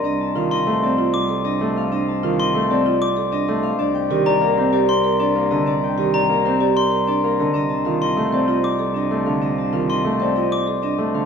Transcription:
<<
  \new Staff \with { instrumentName = "Glockenspiel" } { \time 6/4 \key f \mixolydian \tempo 4 = 192 r4. c'''8 r4. d'''8 r2 | r4. c'''8 r4. d'''8 r2 | r4. bes''8 r4. c'''8 r2 | r4. bes''8 r4. c'''8 r2 |
r4. c'''8 r4. d'''8 r2 | r4. c'''8 r4. d'''8 r2 | }
  \new Staff \with { instrumentName = "Harp" } { \time 6/4 \key f \mixolydian <c'' ees''>8 a''8 f''8 ees''8 c''8 d''2 ees''8 c''8 f''8 | ees''8 a''8 f''8 ees''8 c''8 d''2 ees''8 c''8 f''8 | d''8 g''8 ees''8 d''8 bes'8 c''8 d''4. d''8 bes'8 ees''8 | d''8 g''8 ees''8 d''8 bes'8 c''8 d''4. d''8 bes'8 ees''8 |
ees''8 a''8 f''8 ees''8 c''8 d''8 ees''4. ees''8 c''8 f''8 | ees''8 a''8 f''8 ees''8 c''8 d''8 ees''4. ees''8 c''8 f''8 | }
  \new Staff \with { instrumentName = "Marimba" } { \time 6/4 \key f \mixolydian d'8 r8 f'8 r4. f'8 r8 a'8 d'8 r4 | d'8 r8 f'8 r4. f'8 r8 a'8 d'8 r4 | d'8 r8 g'8 r4. g'8 r8 bes'8 d'8 r4 | d'8 r8 g'8 r4. g'8 r8 bes'8 d'8 r4 |
d'8 r8 f'8 r4 c''8 f'8 r8 a'8 d'8 r4 | d'8 r8 f'8 r4 c''8 f'8 r8 a'8 d'8 r4 | }
  \new Staff \with { instrumentName = "Grand piano" } { \time 6/4 \key f \mixolydian r4 ees8 r8 a8 c'8 r2 a8 r8 | r4 ees8 r8 a8 c'8 r2 a8 r8 | r4 ees8 r8 bes8 c'8 r2 bes8 d8 | r4 ees8 r8 bes8 c'8 r2 bes8 d8 |
r4 ees8 r8 a8 c'8 r2 a8 d8 | r4 ees8 r8 a8 c'8 r2 a8 d8 | }
  \new Staff \with { instrumentName = "Cello" } { \clef bass \time 6/4 \key f \mixolydian c,1.~ | c,1. | c,1.~ | c,1. |
c,1.~ | c,1. | }
>>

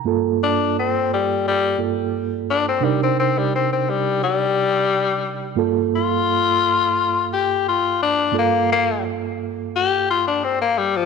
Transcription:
<<
  \new Staff \with { instrumentName = "Reed electric piano" } { \time 4/4 \key g \minor \tempo 4 = 87 <g, bes f' a'>2~ <g, bes f' a'>8 <g, bes f' a'>4. | <c d' ees' bes'>1 | <g, bes f' a'>1 | <g, bes f' a'>1 | }
  \new Staff \with { instrumentName = "Tenor saxophone" } { \time 4/4 \key g \minor r8 d'8 c'8 g8 g8 r4 d'16 c'16 | g16 c'16 c'16 g16 c'16 c'16 g8 g2 | r8 f'2 g'8 f'8 d'8 | bes8 bes8 r4 g'8 f'16 d'16 c'16 bes16 g16 f16 | }
>>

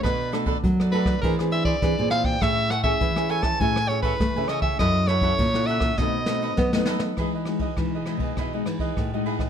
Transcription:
<<
  \new Staff \with { instrumentName = "Soprano saxophone" } { \time 4/4 \key e \major \tempo 4 = 101 b'8 r4 b'8 ais'8 e''16 d''8. f''16 g''16 | e''8 fis''16 e''8. gis''16 a''16 gis''8 cis''16 b'8. dis''16 e''16 | dis''8 cis''4 e''8 dis''4. r8 | r1 | }
  \new Staff \with { instrumentName = "Cavaquinho" } { \time 4/4 \key e \major <d' a' b' d''>8 <d' a' b' d''>16 <d' a' b' d''>16 r16 <a' b' d''>16 <d' a' b' d''>16 <a' b' d''>16 <e' gis' bis' d''>8 <e' gis' bis' d''>16 <e' gis' bis' d''>16 r16 <gis' bis' d''>16 <e' gis' bis' d''>16 <gis' bis' d''>16 | <a' cis'' e'' gis''>8 <a' cis'' e'' gis''>16 <a' cis'' e'' gis''>16 r16 <cis'' e'' gis''>16 <a' cis'' e'' gis''>16 <cis'' e'' gis''>16 <a' cis'' e'' gis''>8 <a' cis'' e'' gis''>16 <a' cis'' e'' gis''>16 r16 <cis'' e'' gis''>16 <a' cis'' e'' gis''>16 <cis'' e'' gis''>16 | <e' a' cis'' fis''>8 <e' a' cis'' fis''>16 <e' a' cis'' fis''>16 r16 <a' cis'' fis''>16 <e' a' cis'' fis''>16 <a' cis'' fis''>16 <dis' a' b' dis''>8 <dis' a' b' dis''>16 <dis' a' b' dis''>16 r16 <a' b' dis''>16 <dis' a' b' dis''>16 <a' b' dis''>16 | <e' gis' b' dis''>16 <gis' b' dis''>8 <gis' b' dis''>16 r16 <gis' b' dis''>16 <e' gis' b' dis''>16 <gis' b' dis''>16 <e' gis' b' dis''>16 <gis' b' dis''>16 r16 <gis' b' dis''>8 <gis' b' dis''>16 <e' gis' b' dis''>16 <gis' b' dis''>16 | }
  \new Staff \with { instrumentName = "Nylon-string guitar" } { \time 4/4 \key e \major << { <a d' fis'>16 r16 <a d' fis'>8. r16 <a d' fis'>8 <bis d' gis'>16 <bis d' gis'>8. <bis d' gis'>16 <bis d' gis'>8. | <cis' e' gis'>8 r16 <cis' e' gis'>8 <cis' e' gis'>8. <cis' e' gis'>16 r16 <cis' e' gis'>8 r16 <cis' e' gis'>8. | <cis' e' a'>8 r16 <cis' e' a'>8 <cis' e' a'>8. <a c' dis'>16 r16 <a c' dis'>8. <a dis'>8. | <gis dis' fis'>8 <gis dis' fis'>16 r16 <gis dis' fis'>16 r16 <gis dis' fis'>8. <gis dis' fis'>4 <gis dis' fis'>8. | } \\ { b,4 fis,4 e4 e4 | a4 e4 a4 e4 | fis4 cis4 b,4 fis4 | e4 b,4 e4 b,4 | } >> }
  \new Staff \with { instrumentName = "Nylon-string guitar" } { \clef bass \time 4/4 \key e \major b,4 fis4 e4 e16 ais,8. | a,4 e4 a,4 a16 cis8. | fis,4 ais,4 b,4 b16 b8. | e4 e8. b,16 b,8 e8 a,4 | }
  \new DrumStaff \with { instrumentName = "Drums" } \drummode { \time 4/4 <hh bd ss>16 hh16 <hh ss>16 <hh bd>16 <hh bd>16 <hh ss>16 hh16 <hh bd ss>16 <hh bd>16 <hh ss>16 hh16 bd16 <hh bd ss>16 hh16 <hh ss>16 <hh bd>16 | <hh bd ss>16 hh16 <hh ss>16 bd16 <hh bd>16 <hh ss>16 hh16 <bd ss>16 <hh bd>16 ss16 hh16 bd16 <hh bd ss>16 hh16 <hh ss>16 <hh bd>16 | <hh bd ss>16 hh16 <hh ss>16 <hh bd>16 <hh bd>16 <hh ss>16 hh16 <hh bd ss>16 <bd sn>8 sn8 <bd sn>16 sn16 sn16 sn16 | <bd cymr ss>8 <cymr ss>16 <bd cymr>16 <bd cymr ss>8 <cymr ss>16 <bd cymr>16 <bd cymr ss>8 <cymr ss>16 <bd cymr>16 <bd cymr ss>8 cymr16 <bd cymr ss>16 | }
>>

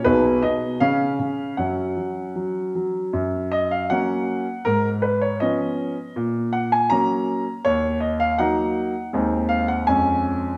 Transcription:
<<
  \new Staff \with { instrumentName = "Grand piano" } { \time 2/4 \key fis \major \tempo 4 = 80 << { b'8 dis''8 eis''4 | fis''4. r8 | r8 dis''16 eis''16 fis''4 | ais'8 b'16 cis''16 dis''4 |
r8 fis''16 gis''16 ais''4 | cis''8 dis''16 eis''16 fis''4 | r8 eis''16 fis''16 gis''4 | } \\ { <dis' gis'>4 <cis' gis'>4 | <cis' fis'>2 | r2 | r2 |
r2 | r2 | r2 | } >> }
  \new Staff \with { instrumentName = "Grand piano" } { \clef bass \time 2/4 \key fis \major <b,, b,>8 b,8 cis8 cis8 | <fis, fis>8 fis8 fis8 fis8 | fis,4 <fis ais cis'>4 | gis,4 <eis b cis'>4 |
ais,4 <fis ais cis'>4 | dis,4 <fis ais dis'>4 | <dis, gis bis dis'>4 <eis, gis cis'>4 | }
>>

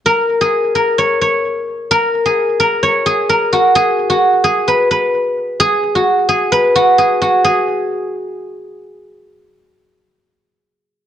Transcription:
\new Staff \with { instrumentName = "Guzheng" } { \time 4/4 \key gis \minor \tempo 4 = 130 ais'8. gis'16 r8 ais'8 cis''8 cis''4. | ais'8. gis'16 r8 ais'8 cis''8 gis'8 ais'8 fis'8 | gis'8. fis'16 r8 gis'8 b'8 b'4. | gis'8. fis'16 r8 gis'8 b'8 fis'8 gis'8 fis'8 |
gis'2. r4 | r1 | }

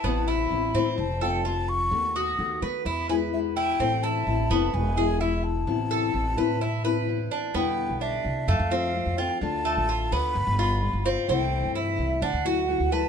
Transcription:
<<
  \new Staff \with { instrumentName = "Flute" } { \time 4/4 \key a \minor \tempo 4 = 128 a''8 b''4. a''8 g''8 a''8 cis'''8~ | cis'''8 dis'''4 r8 b''8 gis''8 e''8 g''8~ | g''8 a''4. gis''4 e''8 a''8~ | a''2. r4 |
g''4 e''4 f''4. g''8 | a''4. b''2 r8 | g''4 e''4 fis''4. a''8 | }
  \new Staff \with { instrumentName = "Cuban tres" } { \time 4/4 \key a \minor b8 e'4 c'4 a'8 f'8 r8 | r8 fis'4 b'8 e'8 b'4 e'8 | c'8 e'4 b4 gis'8 e'8 r8 | r8 a'4 b'8 e'8 b'4 d'8 |
b4 d'4 a8 c'4 f'8~ | f'8 a8 f'8 b4 f'4 c'8 | c'4 e'4 d'8 fis'4 b'8 | }
  \new Staff \with { instrumentName = "Nylon-string guitar" } { \time 4/4 \key a \minor <c e b c' e'>4 <e b c' e'>8 <e b c' e'>8 r8 <f a c' f'>8 <f a c' f'>4 | <dis a b fis'>4 <dis a b fis'>8 <a b fis'>8 r8 <e gis b e'>8 <e gis b e'>4 | <e a c' e'>4 <e a c' e'>8 <a c' e'>8 r8 <e gis b e'>8 <e gis b e'>4 | <c e b c' e'>4 <e b c' e'>8 <e b c' e'>8 r8 <e b c' e'>8 <e b c' e'>4 |
<b, d g b e'>2 r8 <f a c' f'>8 <f a c' f'>8 <f a c' f'>8 | <d a d' f'>2 r8 <b f'>8 <g b f'>8 <b f'>8 | <c e a c' e'>2 r8 <fis a e' fis'>8 <fis a e' fis'>8 <fis a e' fis'>8 | }
  \new Staff \with { instrumentName = "Upright bass" } { \clef bass \time 4/4 \key a \minor a,,4 a,,8 a,8 f,,2 | dis,4 dis,8 dis8 e,2 | a,,4 a,,8 f,,8 e,,2 | a,,4 a,,8 a,2 r8 |
e,8. b,,8. c,8 f,16 f,4 f,8 r16 | d,8. a,,8. d,8 g,,16 g,,4 g,,8 r16 | c,8. g,8. c,8 d,16 d,4 d,8 r16 | }
>>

